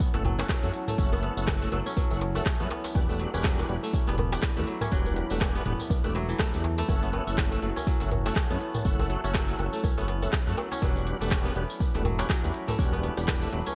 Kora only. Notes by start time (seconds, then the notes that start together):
Already playing: F#3 A3 B3 C#4
0.14 A3
0.24 F#3
0.39 C#4
0.49 F#3
0.88 A3
0.98 C#4
1.12 B3
1.23 B3
1.61 A3
1.72 F#3
1.86 C#4
1.97 F#3
2.35 A3
2.46 C#4
2.60 B3
2.71 B3
3.09 A3
3.20 F#3
3.34 C#4
3.44 F#3
3.83 A3
3.93 C#4
4.08 B3
4.18 B3
4.57 A3
4.67 F#3
4.81 C#4
4.92 F#3
5.31 A3
5.41 C#4
5.55 B3
5.66 B3
6.04 A3
6.15 F#3
6.29 E3
6.39 A3
6.78 A3
6.89 C#4
7.03 B3
7.13 B3
7.52 A3
7.62 F#3
7.76 C#4
7.87 F#3
8.25 A3
8.36 C#4
8.50 B3
8.61 B3
8.99 A3
9.10 F#3
9.24 C#4
9.35 F#3
9.73 A3
9.84 C#4
9.98 B3
10.08 B3
10.47 A3
10.57 F#3
10.71 C#4
10.82 F#3
11.21 A3
11.31 C#4
11.45 B3
11.56 B3
11.95 A3
12.05 F#3
12.19 C#4
12.29 F#3
12.68 A3
12.79 C#4
12.93 B3
13.03 B3
13.42 A3
13.52 F#3
13.67 C#4